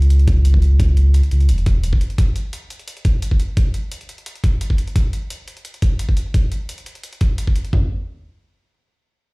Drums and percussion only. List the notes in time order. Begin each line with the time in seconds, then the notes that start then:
0.02 closed hi-hat
0.10 closed hi-hat
0.19 closed hi-hat
0.28 kick, closed hi-hat
0.45 closed hi-hat
0.54 kick
0.62 closed hi-hat
0.80 kick, closed hi-hat
0.97 closed hi-hat
1.14 closed hi-hat
1.23 closed hi-hat
1.31 closed hi-hat
1.40 closed hi-hat
1.49 closed hi-hat
1.58 closed hi-hat
1.66 kick, closed hi-hat
1.84 closed hi-hat
1.93 kick
2.01 closed hi-hat
2.10 closed hi-hat
2.18 kick, closed hi-hat
2.36 closed hi-hat
2.53 closed hi-hat
2.70 closed hi-hat
2.79 closed hi-hat
2.88 closed hi-hat
2.97 closed hi-hat
3.05 kick, closed hi-hat
3.22 closed hi-hat
3.31 kick
3.40 closed hi-hat
3.57 kick, closed hi-hat
3.74 closed hi-hat
3.92 closed hi-hat
4.01 closed hi-hat
4.09 closed hi-hat
4.18 closed hi-hat
4.26 closed hi-hat
4.36 closed hi-hat
4.44 kick, closed hi-hat
4.61 closed hi-hat
4.70 kick
4.78 closed hi-hat
4.87 closed hi-hat
4.96 kick, closed hi-hat
5.13 closed hi-hat
5.30 closed hi-hat
5.48 closed hi-hat
5.57 closed hi-hat
5.65 closed hi-hat
5.74 closed hi-hat
5.82 kick, closed hi-hat
5.99 closed hi-hat
6.09 kick
6.17 closed hi-hat
6.34 kick, closed hi-hat
6.52 closed hi-hat
6.69 closed hi-hat
6.78 closed hi-hat
6.86 closed hi-hat
6.95 closed hi-hat
7.03 closed hi-hat
7.13 closed hi-hat
7.21 kick, closed hi-hat
7.38 closed hi-hat
7.47 kick
7.56 closed hi-hat
7.65 closed hi-hat
7.73 kick, floor tom